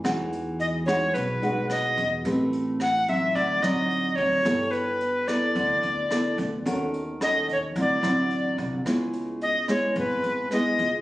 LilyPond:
<<
  \new Staff \with { instrumentName = "Recorder" } { \time 4/4 \key e \major \tempo 4 = 109 r4 dis''8 cis''8 b'4 dis''8. r16 | r4 fis''8 e''8 d''8 ees''4 cis''8~ | cis''8 b'4 d''2 r8 | r4 dis''8 cis''8 d''4. r8 |
r4 dis''8 cis''8 b'4 dis''8. r16 | }
  \new Staff \with { instrumentName = "Nylon-string guitar" } { \time 4/4 \key e \major << { <gis dis' fis'>4. <gis dis' fis'>4 <gis dis' fis'>4. | <c' g' b'>4 r8 <fis c' dis'>4 <fis c' ees'>4. | <b e' a'>4 r8 <b e' a'>4. <b e' a'>8 r8 | <cis' fis' a'>8 r8 <cis' fis' a'>8 r8 <fis c' e'>8 <fis c' e'>4. |
<gis b e'>4 r8 <gis b e'>4. <gis b e'>8 r8 | } \\ { e2 b,2 | a2 d2 | g2 d2 | dis2 d2 |
cis2 gis,2 | } >> }
  \new Staff \with { instrumentName = "Upright bass" } { \clef bass \time 4/4 \key e \major e,2 b,,8 b,,4 e,8 | a,,2 d,8 a,,4 d,8 | g,,2 d,8 d,4 d,8 | dis,2 d,8 a,,4 c,8 |
cis,2 gis,,8 gis,,4 cis,8 | }
  \new DrumStaff \with { instrumentName = "Drums" } \drummode { \time 4/4 <hh bd ss>8 hh8 hh8 <hh ss>8 <hh bd>8 hh8 <hh ss>8 <hh bd>8 | <hh bd>8 hh8 <hh ss>8 hh8 <hh bd>8 <hh ss>8 hh8 <hh bd>8 | <hh bd ss>8 hh8 hh8 <hh ss>8 <hh bd>8 hh8 <hh ss>8 <hh bd>8 | <hh bd>8 hh8 <hh ss>8 <hh bd>8 <hh bd>8 <hh ss>8 hh8 <hh bd>8 |
<hh bd ss>8 hh8 hh8 <hh ss>8 <hh bd>8 hh8 <hh ss>8 <hh bd>8 | }
>>